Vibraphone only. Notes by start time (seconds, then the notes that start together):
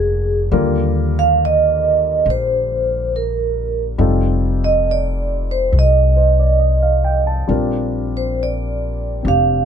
Already playing: G#4
1.19 F5
1.45 D#5
2.30 C5
3.16 A#4
4.64 D#5
4.91 D5
5.51 C5
5.79 D#5
8.17 C5
8.43 D5
9.28 F5